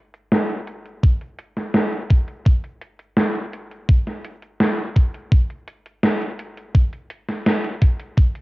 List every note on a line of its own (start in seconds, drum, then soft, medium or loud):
0.14 closed hi-hat soft
0.32 snare loud
0.32 closed hi-hat medium
0.50 closed hi-hat soft
0.67 closed hi-hat medium
0.86 closed hi-hat soft
1.03 kick loud
1.03 closed hi-hat medium
1.21 closed hi-hat soft
1.39 closed hi-hat medium
1.57 snare soft
1.57 closed hi-hat soft
1.74 snare loud
1.74 closed hi-hat medium
1.92 closed hi-hat soft
2.10 kick medium
2.10 closed hi-hat medium
2.28 closed hi-hat soft
2.45 kick loud
2.45 closed hi-hat medium
2.64 closed hi-hat soft
2.81 closed hi-hat medium
2.99 closed hi-hat soft
3.17 snare loud
3.17 closed hi-hat medium
3.35 closed hi-hat soft
3.53 closed hi-hat medium
3.71 closed hi-hat soft
3.89 kick loud
3.89 closed hi-hat medium
4.07 snare soft
4.07 closed hi-hat soft
4.25 closed hi-hat medium
4.42 closed hi-hat soft
4.60 snare loud
4.60 closed hi-hat medium
4.78 closed hi-hat soft
4.96 kick medium
4.96 closed hi-hat medium
5.14 closed hi-hat soft
5.32 kick loud
5.32 closed hi-hat medium
5.50 closed hi-hat soft
5.68 closed hi-hat medium
5.86 closed hi-hat soft
6.03 snare loud
6.03 closed hi-hat medium
6.22 closed hi-hat soft
6.39 closed hi-hat medium
6.57 closed hi-hat soft
6.75 kick loud
6.75 closed hi-hat medium
6.93 closed hi-hat soft
7.10 closed hi-hat medium
7.28 snare soft
7.28 closed hi-hat soft
7.46 snare loud
7.46 closed hi-hat medium
7.64 closed hi-hat soft
7.82 kick medium
7.82 closed hi-hat medium
8.00 closed hi-hat soft
8.17 kick loud
8.17 closed hi-hat medium
8.35 closed hi-hat soft